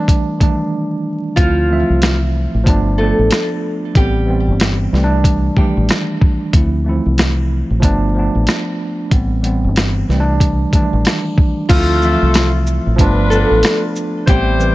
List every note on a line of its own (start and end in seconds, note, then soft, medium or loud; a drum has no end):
0.00 0.37 E3 medium
0.00 0.38 G3 medium
0.00 0.39 A3 medium
0.00 0.42 D4 loud
0.08 kick medium
0.08 closed hi-hat medium
0.39 0.48 D#3 medium
0.39 1.32 G3 medium
0.39 1.32 A3 medium
0.39 kick medium
0.39 closed hi-hat medium
0.43 1.34 E3 medium
0.43 1.33 D4 medium
1.36 1.82 D2 loud
1.36 1.67 F3 medium
1.36 2.18 F3 medium
1.36 1.68 A3 medium
1.36 1.69 C4 medium
1.36 2.17 F4 loud
1.36 kick loud
1.36 closed hi-hat medium
1.41 1.70 E4 medium
1.68 1.77 E3 medium
1.68 2.64 A3 medium
1.68 2.67 C4 medium
1.73 2.63 F3 medium
1.73 2.68 E5 medium
1.90 2.45 C2 medium
2.02 cross-stick medium
2.02 snare loud
2.02 closed hi-hat medium
2.54 2.65 A1 medium
2.64 3.11 G1 loud
2.64 2.96 F3 loud
2.64 2.96 A3 medium
2.64 2.97 B3 medium
2.64 kick medium
2.64 closed hi-hat medium
2.68 2.98 D4 loud
2.98 3.90 F3 medium
2.98 3.48 A3 medium
2.98 3.91 A3 medium
2.98 3.91 B3 medium
2.98 3.47 A4 medium
3.03 3.92 D4 medium
3.19 3.29 A1 medium
3.31 cross-stick medium
3.31 snare loud
3.31 closed hi-hat medium
3.93 4.49 A1 loud
3.93 4.24 E3 medium
3.93 4.26 G3 medium
3.93 4.26 B3 medium
3.93 4.76 G4 loud
3.93 kick loud
3.93 closed hi-hat medium
3.97 4.77 G3 medium
3.97 4.27 C4 medium
4.26 4.91 E3 medium
4.26 4.92 G3 medium
4.26 4.93 B3 medium
4.30 4.93 C4 medium
4.48 4.86 G1 medium
4.60 cross-stick medium
4.60 snare loud
4.60 closed hi-hat medium
4.92 5.48 C2 loud
4.92 5.54 E3 medium
4.92 5.54 G3 medium
4.92 5.55 A3 medium
4.92 snare soft
4.97 5.03 C4 medium
5.04 5.58 D4 loud
5.24 kick loud
5.24 closed hi-hat medium
5.55 5.64 D#3 medium
5.55 6.48 G3 medium
5.55 5.86 G3 medium
5.55 6.48 A3 medium
5.55 5.86 G4 medium
5.55 kick medium
5.59 6.50 E3 medium
5.59 6.49 D4 medium
5.77 5.88 A1 loud
5.89 cross-stick medium
5.89 snare loud
5.89 closed hi-hat medium
6.21 kick loud
6.53 6.98 D2 loud
6.53 6.83 F3 medium
6.53 6.84 A3 medium
6.53 6.85 C4 medium
6.53 kick loud
6.53 closed hi-hat medium
6.57 6.86 E4 medium
6.85 6.93 E3 medium
6.85 7.80 A3 medium
6.85 7.83 C4 medium
6.89 7.79 F3 medium
6.89 7.84 E4 medium
7.06 7.61 C2 medium
7.18 cross-stick medium
7.18 snare loud
7.18 closed hi-hat medium
7.70 7.81 A1 medium
7.80 8.27 G1 loud
7.80 8.12 F3 loud
7.80 8.12 A3 medium
7.80 8.13 B3 medium
7.80 kick medium
7.80 closed hi-hat medium
7.84 8.14 D4 loud
8.15 9.06 F3 medium
8.15 9.07 A3 medium
8.15 9.08 B3 medium
8.19 9.08 D4 medium
8.35 8.46 A1 loud
8.47 cross-stick medium
8.47 snare loud
8.47 closed hi-hat medium
9.10 9.66 A1 loud
9.10 9.41 E3 medium
9.10 9.42 G3 medium
9.10 9.42 B3 medium
9.10 kick loud
9.10 closed hi-hat medium
9.14 9.43 C4 medium
9.42 10.07 E3 medium
9.42 10.08 G3 medium
9.42 10.09 B3 medium
9.42 closed hi-hat medium
9.46 10.10 C4 medium
9.64 10.02 G1 medium
9.76 cross-stick medium
9.76 snare loud
9.76 closed hi-hat medium
10.09 10.64 C2 loud
10.09 10.70 E3 medium
10.09 10.70 G3 medium
10.09 10.71 A3 medium
10.09 snare soft
10.14 10.19 C4 medium
10.20 10.74 D4 loud
10.40 kick medium
10.40 closed hi-hat medium
10.71 10.80 D#3 medium
10.71 11.64 G3 medium
10.71 11.65 A3 medium
10.71 kick medium
10.71 closed hi-hat medium
10.75 11.67 E3 medium
10.75 11.65 D4 medium
10.93 11.04 A1 loud
11.05 cross-stick medium
11.05 snare loud
11.05 closed hi-hat medium
11.38 kick loud
11.69 12.15 D2 loud
11.69 12.00 F3 medium
11.69 12.50 F3 medium
11.69 12.64 A3 medium
11.69 12.00 A3 medium
11.69 12.01 C4 medium
11.69 12.50 F4 loud
11.69 12.64 F4 medium
11.69 12.64 A4 medium
11.69 kick loud
11.69 closed hi-hat medium
11.69 crash loud
11.73 12.02 E4 medium
12.01 12.09 E3 medium
12.01 12.96 A3 medium
12.01 13.00 C4 medium
12.01 shaker medium
12.05 12.95 F3 medium
12.05 13.00 E5 medium
12.22 12.78 C2 medium
12.34 cross-stick loud
12.34 snare loud
12.34 closed hi-hat medium
12.34 tambourine medium
12.67 shaker medium
12.86 12.97 A1 medium
12.96 13.44 G1 loud
12.96 13.28 F3 loud
12.96 13.29 A3 medium
12.96 13.29 B3 medium
12.96 13.94 D4 medium
12.96 13.94 F4 medium
12.96 13.94 B4 medium
12.96 kick loud
12.96 closed hi-hat medium
13.00 13.30 D4 loud
13.30 14.22 F3 medium
13.30 13.80 A3 medium
13.30 14.23 A3 medium
13.30 14.24 B3 medium
13.30 13.79 A4 medium
13.30 shaker medium
13.35 14.24 D4 medium
13.51 13.62 A1 loud
13.63 cross-stick loud
13.63 snare loud
13.63 closed hi-hat medium
13.63 tambourine medium
13.96 shaker medium
14.26 14.75 A1 loud
14.26 14.57 E3 medium
14.26 14.58 G3 medium
14.26 14.75 G3 medium
14.26 14.59 B3 medium
14.26 14.75 E4 medium
14.26 14.75 G4 medium
14.26 14.75 G4 loud
14.26 14.75 C5 medium
14.26 kick loud
14.26 closed hi-hat medium
14.30 14.59 C4 medium
14.58 14.75 E3 medium
14.58 14.75 G3 medium
14.58 14.75 B4 medium
14.58 shaker medium
14.62 14.75 C4 medium